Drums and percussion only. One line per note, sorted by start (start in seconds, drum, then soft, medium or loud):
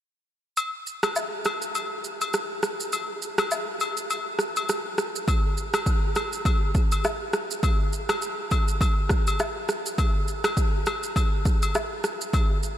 0.57 high agogo medium
0.57 shaker medium
0.87 shaker medium
1.03 cross-stick loud
1.03 high agogo medium
1.03 shaker medium
1.16 low woodblock medium
1.16 shaker medium
1.45 cross-stick loud
1.45 high agogo medium
1.45 shaker medium
1.62 shaker medium
1.75 high agogo medium
1.75 shaker medium
2.04 shaker soft
2.21 high agogo medium
2.21 shaker medium
2.34 cross-stick medium
2.34 shaker medium
2.63 cross-stick medium
2.63 shaker soft
2.80 shaker medium
2.93 high agogo medium
2.93 shaker medium
3.22 shaker medium
3.38 cross-stick loud
3.38 high agogo medium
3.38 shaker medium
3.51 low woodblock medium
3.51 shaker medium
3.80 high agogo medium
3.80 shaker medium
3.97 shaker medium
4.10 high agogo medium
4.10 shaker medium
4.39 cross-stick medium
4.39 shaker soft
4.56 high agogo medium
4.56 shaker medium
4.69 cross-stick medium
4.69 shaker medium
4.98 cross-stick medium
4.98 shaker medium
5.16 shaker medium
5.28 kick loud
5.28 high agogo medium
5.28 shaker medium
5.57 shaker medium
5.74 cross-stick loud
5.74 high agogo medium
5.74 shaker medium
5.86 kick medium
5.86 shaker medium
6.16 cross-stick medium
6.16 high agogo medium
6.16 shaker medium
6.33 shaker medium
6.45 kick medium
6.45 high agogo medium
6.45 shaker medium
6.75 kick medium
6.75 shaker soft
6.92 high agogo medium
6.92 shaker medium
7.04 cross-stick medium
7.04 low woodblock medium
7.04 shaker medium
7.33 cross-stick medium
7.33 shaker soft
7.51 shaker medium
7.63 kick loud
7.63 high agogo medium
7.63 shaker medium
7.93 shaker medium
8.09 cross-stick loud
8.09 high agogo medium
8.09 shaker medium
8.22 shaker medium
8.51 kick medium
8.51 high agogo medium
8.51 shaker medium
8.68 shaker medium
8.81 kick medium
8.81 high agogo medium
8.81 shaker medium
9.09 kick medium
9.09 cross-stick medium
9.09 shaker soft
9.27 high agogo medium
9.27 shaker medium
9.40 cross-stick medium
9.40 low woodblock medium
9.40 shaker medium
9.69 cross-stick medium
9.69 shaker medium
9.86 shaker medium
9.98 kick loud
9.98 high agogo medium
9.98 shaker medium
10.28 shaker medium
10.44 cross-stick loud
10.44 high agogo medium
10.44 shaker medium
10.57 kick medium
10.57 shaker medium
10.86 cross-stick loud
10.86 high agogo medium
10.86 shaker medium
11.03 shaker medium
11.16 kick medium
11.16 high agogo medium
11.16 shaker medium
11.45 kick medium
11.45 shaker soft
11.62 high agogo medium
11.62 shaker medium
11.75 cross-stick medium
11.75 low woodblock medium
11.75 shaker medium
12.04 cross-stick medium
12.04 shaker soft
12.21 shaker medium
12.34 kick loud
12.34 high agogo medium
12.34 shaker medium
12.63 shaker medium